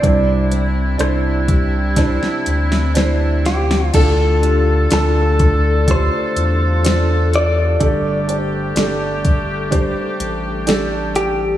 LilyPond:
<<
  \new Staff \with { instrumentName = "Clean electric guitar" } { \time 4/4 \key d \minor \tempo 4 = 62 d''2. r8 g'8 | a'4 a'4 c''4. d''8~ | d''4. r2 g'8 | }
  \new Staff \with { instrumentName = "Felt piano" } { \time 4/4 \key d \minor <d' e' c''>4 <d' e' c''>4 <d' e' c''>4 <d' e' c''>4 | <d' f' a'>8 <d' f' g'>8 <d' f' a'>4 <d' f' g'>4 <d' f' c''>4 | <d' g' a'>8 <d' g' c''>8 <d' g' a'>4 <d' g' c''>4 <d' g' a'>4 | }
  \new Staff \with { instrumentName = "Felt piano" } { \clef bass \time 4/4 \key d \minor g,4. r2 r8 | a,4. r2 r8 | <g, d>4. r2 r8 | }
  \new Staff \with { instrumentName = "Steel-string acoustic guitar" } { \time 4/4 \key d \minor c8 c'8 d'8 g'8 d'8 c'8 d'8 c'8 | d8 f'8 d'8 a'8 a8 f'8 a'8 f'8 | g,8 g'8 d'8 a'8 g8 g'8 a'8 g'8 | }
  \new Staff \with { instrumentName = "Woodwind section" } { \time 4/4 \key d \minor <c c' d' e'>1 | <d d' f' a'>1 | <a g'>1 | }
  \new Staff \with { instrumentName = "Sub bass" } { \clef bass \time 4/4 \key d \minor c,4 c,4~ c,16 r16 d,4. | d,4 d,4~ d,16 r16 e,4. | g,,4 g,,4~ g,,16 r16 a,,4. | }
  \new DrumStaff \with { instrumentName = "Drums" } \drummode { \time 4/4 <hh bd>8 hh8 <hh ss>8 <hh bd>8 <hh bd sn>16 sn16 hh16 sn16 <hh sn>8 <hh sn>16 sn16 | <cymc hh bd>8 hh8 <hh sn>8 <hh bd>8 <hh bd>8 hh8 <hh sn>8 hh8 | <hh bd>8 hh8 <hh sn>8 <hh bd>8 <hh bd>8 hh8 <hh sn>8 hh8 | }
>>